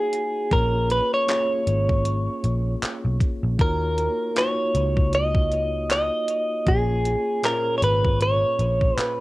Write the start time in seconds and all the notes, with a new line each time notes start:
Already playing: A#3 D#4 F#4 G#4 C#5 F5
0.13 closed hi-hat
0.50 A#1 A#3 C#4 F4 G#4 A#4 C#5, kick, closed hi-hat
0.90 B4, closed hi-hat
1.14 C#5
1.27 A#3 C#4 F4 G#4 C#5, clap, closed hi-hat
1.67 G#1, closed hi-hat
1.89 kick
2.05 closed hi-hat
2.44 A#1, closed hi-hat
2.82 muted picked electric bass stroke, clap, closed hi-hat
3.05 B1
3.20 kick, closed hi-hat
3.43 A#1
3.58 D#2 A#3 D#4 F4 F#4 A#4 C#5, kick, closed hi-hat
3.98 closed hi-hat
4.35 A#3 D#4 F4 F#4 C#5, clap, closed hi-hat
4.75 C#2, closed hi-hat
4.97 kick
5.13 D#5, closed hi-hat
5.35 kick
5.52 closed hi-hat
5.90 D#5, clap, closed hi-hat
6.28 closed hi-hat
6.65 A#1 A#3 C#4 F4 G#4 C#5, kick, closed hi-hat
7.05 closed hi-hat
7.42 A#2 C#4 F4 G#4 A#4 C5, clap, closed hi-hat
7.53 C#5
7.78 C#5
7.82 G#1 B4, closed hi-hat
8.04 kick
8.20 C#5, closed hi-hat
8.59 A#1, closed hi-hat
8.81 kick
8.97 B4, muted picked electric bass stroke, clap, closed hi-hat